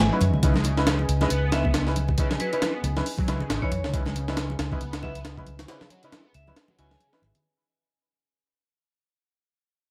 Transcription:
Already playing: C#4 G#4 B4 D#5 E5
0.00 snare, closed hi-hat
0.12 F#3 C#4 D#4 E4 B4
0.21 F#2, closed hi-hat, muted conga, high conga
0.34 C#2, low conga
0.43 C#3 C#4 D#4 E4 B4 G#5, kick, closed hi-hat, muted conga
0.54 G#3, snare, high conga
0.64 C#3, closed hi-hat, muted conga
0.77 C#4 D#4 E4 B4, snare
0.87 C#3, snare, closed hi-hat, high conga
0.99 muted conga
1.09 C#2, closed hi-hat
1.21 G#3 C#4 D#4 E4 B4, snare, muted conga, high conga
1.30 C#2 B3, closed hi-hat
1.52 C#4 D#4 E4 B4 E5, snare, closed hi-hat, muted conga
1.65 kick, high conga
1.74 snare, closed hi-hat, muted conga
1.87 C#4 D#4 E4 B4, snare
1.96 closed hi-hat, high conga
2.08 kick, muted conga, low conga
2.18 C#3 C#4 D#4 E4 B4, kick, closed hi-hat
2.31 snare, muted conga, high conga
2.40 F#3 B4, closed hi-hat
2.53 C#3 C#4 D#4 E4 B4, closed hi-hat
2.62 E3, snare, closed hi-hat, muted conga, high conga
2.74 B3
2.84 C#2, closed hi-hat, muted conga
2.96 C#4 D#4 E4 B4, snare, high conga
3.06 open hi-hat
3.17 F#3, kick, muted conga
3.28 C#2 F#3 C#4 D#4 E4 B4, snare, closed hi-hat
3.40 C#3, muted fingered electric bass stroke, muted conga, high conga
3.50 G#1, snare, closed hi-hat
3.62 E3 C#4 D#4 E4 B4 C#5, kick
3.72 F#2 C#5, closed hi-hat, muted conga, high conga
3.84 C#2, snare, low conga
3.93 C#3 C#4 D#4 E4 B4, kick, closed hi-hat, muted conga
4.06 G#3, snare, high conga
4.15 C#3, closed hi-hat
4.28 C#4 D#4 E4 B4, snare, muted conga
4.37 C#3, snare, closed hi-hat, high conga
4.50 muted conga
4.59 C#2, snare, closed hi-hat
4.72 G#3 C#4 D#4 E4 B4, kick, high conga
4.81 C#2 B3, closed hi-hat, muted conga
4.93 snare, closed hi-hat
5.03 C#4 D#4 E4 B4 E5, kick, muted conga
5.15 closed hi-hat, high conga
5.25 snare, closed hi-hat
5.38 C#4 D#4 E4 B4, kick, muted conga
5.46 closed hi-hat, high conga
5.59 snare, closed hi-hat, muted conga, low conga
5.68 C#3 C#4 D#4 E4 B4, snare, closed hi-hat
5.81 snare, high conga
5.90 F#3, closed hi-hat, muted conga
6.03 C#3 C#4 D#4 E4 B4, closed hi-hat
6.12 E3, snare, closed hi-hat, muted conga, high conga
6.25 B3
6.34 C#2 E5, closed hi-hat
6.47 C#4 D#4 E4 B4, muted conga, high conga
6.56 snare, closed hi-hat
6.68 F#3, muted conga
6.78 C#2 F#3 C#4 D#4 E4 B4 G#5, closed hi-hat
6.91 C#3 G#5, snare, high conga
7.00 closed hi-hat, muted conga
7.12 E3 C#4 D#4 E4 B4, snare
7.22 G#1, muted conga, high conga
7.35 closed hi-hat, low conga

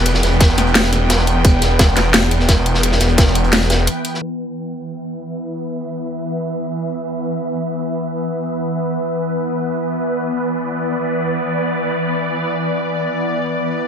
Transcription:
Already playing: E1 E3 B3 B4 G5
0.05 closed hi-hat
0.14 snare
0.23 E1, snare, closed hi-hat
0.32 closed hi-hat
0.40 kick, snare, closed hi-hat
0.49 snare
0.57 snare, closed hi-hat
0.67 closed hi-hat
0.75 snare, closed hi-hat
0.84 snare
0.93 snare, closed hi-hat
1.10 snare, closed hi-hat
1.19 snare
1.27 closed hi-hat
1.45 E1, kick, closed hi-hat
1.62 snare, closed hi-hat
1.79 kick, snare, closed hi-hat
1.97 E1, snare, closed hi-hat
2.14 E1, snare, closed hi-hat
2.31 closed hi-hat
2.40 snare
2.48 kick, snare, closed hi-hat
2.66 closed hi-hat
2.74 snare
2.83 closed hi-hat
2.92 snare
3.00 E1, snare, closed hi-hat
3.09 closed hi-hat
3.18 kick, snare, closed hi-hat
3.27 snare
3.35 closed hi-hat
3.44 closed hi-hat
3.53 snare, closed hi-hat
3.61 snare
3.70 snare, closed hi-hat
3.87 closed hi-hat
4.05 closed hi-hat
4.14 snare
4.22 E3 B3 B4 E5
9.77 D5

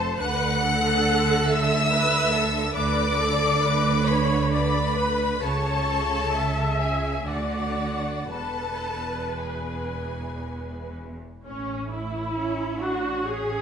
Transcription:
Already playing: F1 F2 A4 C5 A5
0.19 D2 D3 B4 F#5 F#6
0.63 A4
1.48 E5 E6
1.91 B4
2.33 A4
2.74 D2 D3 B4 D5 D6
3.17 A4
3.62 B4
4.06 B4 C#5 B5
4.52 B4 D5 B5
4.97 B4
5.42 C#2 C#3 A4 C#5 A5
6.33 E5
6.80 G#4 G#5
7.27 D2 D3 F#4 D5 F#5
8.30 E1 E2 A4 B4 A5
9.40 G#4 G#5
11.45 A1 A3 C#4 C#5
11.91 E4 E5
12.36 C#4
12.81 D4 F#4 F#5
13.25 C#4 G#4 G#5

